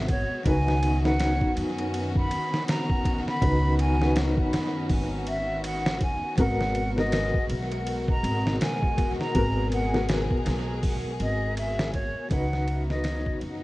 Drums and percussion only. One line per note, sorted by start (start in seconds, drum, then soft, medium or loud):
0.08 kick medium
0.08 ride medium
0.46 kick loud
0.46 ride medium
0.68 snare soft
0.83 ride medium
1.05 snare medium
1.20 snare loud
1.20 ride medium
1.41 kick medium
1.57 ride medium
1.78 ride soft
1.94 ride medium
2.15 kick medium
2.31 ride medium
2.54 snare medium
2.68 snare loud
2.68 ride medium
2.90 kick loud
3.05 kick medium
3.05 ride medium
3.28 snare soft
3.42 kick loud
3.42 ride medium
3.79 ride medium
4.02 snare soft
4.16 snare loud
4.16 ride medium
4.37 kick medium
4.53 snare medium
4.53 ride medium
4.89 kick loud
4.89 open hi-hat medium
5.27 ride medium
5.64 ride loud
5.86 snare loud
6.01 kick medium
6.01 ride medium
6.38 kick loud
6.38 ride medium
6.61 snare soft
6.75 ride medium
6.98 snare soft
7.12 snare loud
7.12 ride medium
7.34 kick medium
7.50 ride medium
7.72 ride soft
7.87 ride medium
8.08 kick medium
8.24 ride medium
8.47 snare medium
8.61 snare loud
8.61 ride medium
8.83 kick loud
8.98 kick medium
8.98 ride medium
9.21 snare soft
9.35 kick loud
9.35 ride medium
9.72 ride medium
9.94 snare soft
10.09 snare loud
10.09 ride medium
10.31 kick medium
10.46 snare medium
10.46 ride medium
10.83 kick loud
10.83 open hi-hat medium
11.20 ride medium
11.57 ride medium
11.79 snare loud
11.94 kick medium
11.94 ride medium
12.31 kick loud
12.31 ride medium
12.53 snare soft
12.68 ride medium
12.90 snare medium
13.04 snare loud
13.04 ride medium
13.26 kick loud
13.41 ride medium